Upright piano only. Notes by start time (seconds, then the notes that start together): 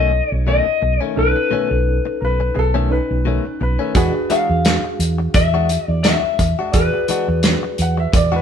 2.21 A#4
2.25 B4
2.54 G#4
2.59 A4
2.92 B4
3.63 B4
3.97 B4
7.82 F#5
8.00 E5
8.16 D5
8.36 B4